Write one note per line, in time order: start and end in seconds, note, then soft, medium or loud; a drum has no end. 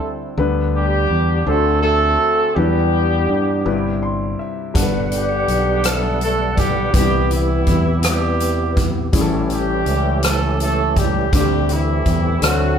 0.00 0.34 D3 soft
0.00 0.36 G3 soft
0.00 0.11 A3 medium
0.00 0.35 C4 medium
0.00 0.37 D4 soft
0.00 0.35 E4 medium
0.00 0.38 E4 medium
0.00 0.11 A4 medium
0.00 0.38 C5 medium
0.38 1.06 D2 medium
0.38 1.43 D3 medium
0.38 1.47 G3 medium
0.38 1.47 B3 medium
0.38 1.45 D4 medium
0.38 1.47 B4 medium
0.76 1.44 G3 medium
0.76 1.44 B3 medium
0.76 1.44 D4 medium
0.76 1.44 G4 medium
1.10 1.44 E2 medium
1.47 2.16 D2 medium
1.47 2.52 D3 medium
1.47 1.81 A3 medium
1.47 2.56 A3 medium
1.47 1.83 C4 medium
1.47 2.56 D4 soft
1.47 2.57 F#4 soft
1.47 1.83 F#4 medium
1.47 1.81 A4 medium
1.47 2.57 C5 medium
1.82 2.52 A3 medium
1.82 2.53 C4 medium
1.82 2.53 F#4 medium
1.82 2.52 A4 medium
2.55 3.25 E2 medium
2.55 3.62 E3 soft
2.55 2.63 F#3 soft
2.55 4.02 G3 medium
2.55 3.99 B3 medium
2.55 3.66 D4 soft
2.55 3.99 D4 medium
2.55 3.64 E4 soft
2.55 4.02 G4 medium
2.55 3.65 B4 medium
2.63 3.64 G3 medium
3.29 3.63 G2 medium
3.65 4.35 G1 medium
3.65 4.71 G2 medium
3.65 4.75 C3 medium
3.65 4.72 G3 medium
3.65 4.75 E4 medium
3.65 3.72 B4 medium
3.73 4.79 G4 medium
4.03 4.36 C6 medium
4.39 4.73 E5 medium
4.74 5.44 G1 medium
4.74 5.81 G2 medium
4.74 6.90 D3 medium
4.74 6.90 G3 medium
4.74 6.90 B3 medium
4.74 6.90 D4 medium
4.74 4.82 A4 soft
4.74 6.90 F#5 medium
4.74 kick medium
4.74 closed hi-hat medium
4.83 6.93 B4 medium
5.12 6.19 B3 medium
5.12 6.19 D4 medium
5.12 closed hi-hat soft
5.16 5.83 G3 medium
5.16 5.83 G4 medium
5.48 6.90 B1 medium
5.48 closed hi-hat soft
5.84 6.22 A3 medium
5.84 6.22 A4 medium
5.84 cross-stick medium
5.84 closed hi-hat medium
6.21 6.56 A3 medium
6.21 6.56 A4 medium
6.21 closed hi-hat soft
6.57 6.94 G3 medium
6.57 6.94 G4 medium
6.57 kick medium
6.57 closed hi-hat soft
6.93 7.63 C2 medium
6.93 7.99 C3 soft
6.93 9.09 C3 soft
6.93 9.09 E3 medium
6.93 9.09 G3 soft
6.93 7.29 G3 medium
6.93 9.09 B3 soft
6.93 7.32 B3 medium
6.93 7.01 D4 soft
6.93 7.31 E4 medium
6.93 9.09 G4 medium
6.93 7.29 G4 medium
6.93 9.10 B4 medium
6.93 kick medium
6.93 closed hi-hat medium
7.00 9.12 E4 soft
7.31 8.05 E3 medium
7.31 8.05 G3 medium
7.31 8.05 B3 soft
7.31 8.05 E4 medium
7.31 closed hi-hat soft
7.67 9.14 E2 medium
7.67 kick medium
7.67 closed hi-hat soft
8.03 8.83 G3 medium
8.03 9.11 B3 medium
8.03 9.10 E4 soft
8.03 8.83 G4 medium
8.03 cross-stick medium
8.03 closed hi-hat medium
8.40 closed hi-hat soft
8.77 kick medium
8.77 closed hi-hat soft
9.13 9.82 A1 medium
9.13 10.19 A2 medium
9.13 11.29 E3 medium
9.13 11.28 G3 medium
9.13 11.29 A3 medium
9.13 11.29 C#4 medium
9.13 11.29 E4 medium
9.13 11.29 G4 medium
9.13 9.21 G#4 medium
9.13 kick medium
9.13 closed hi-hat medium
9.21 11.33 A4 medium
9.50 10.21 G3 medium
9.50 10.57 C#4 medium
9.50 10.57 E4 medium
9.50 10.21 G4 medium
9.50 closed hi-hat soft
9.86 11.28 C#2 medium
9.86 closed hi-hat soft
10.23 10.59 A3 medium
10.23 10.59 A4 medium
10.23 cross-stick medium
10.23 closed hi-hat medium
10.60 10.95 A3 medium
10.60 10.95 A4 medium
10.60 closed hi-hat soft
10.96 11.33 G3 medium
10.96 11.33 G4 medium
10.96 kick medium
10.96 closed hi-hat soft
11.33 12.02 D2 medium
11.33 12.42 D3 medium
11.33 12.39 D3 soft
11.33 11.67 G3 medium
11.33 12.41 A3 soft
11.33 12.42 C4 soft
11.33 11.70 C4 medium
11.33 12.41 D4 soft
11.33 11.40 F#4 soft
11.33 12.42 G4 medium
11.33 11.67 G4 medium
11.33 12.43 C5 medium
11.33 kick medium
11.33 closed hi-hat medium
11.40 12.46 G4 soft
11.69 12.43 E3 medium
11.69 12.39 G3 soft
11.69 12.39 C4 medium
11.69 12.43 E4 medium
11.69 closed hi-hat soft
12.06 12.40 E2 medium
12.06 kick medium
12.06 closed hi-hat soft
12.42 12.79 D2 medium
12.42 12.79 D3 soft
12.42 12.79 D3 medium
12.42 12.79 F#3 medium
12.42 12.79 A3 medium
12.42 12.79 A3 soft
12.42 12.79 A3 medium
12.42 12.79 C4 soft
12.42 12.79 C4 medium
12.42 12.79 D4 soft
12.42 12.79 F#4 medium
12.42 12.79 F#4 soft
12.42 12.79 F#4 medium
12.42 12.49 B4 soft
12.42 cross-stick medium
12.42 closed hi-hat medium
12.49 12.79 C5 medium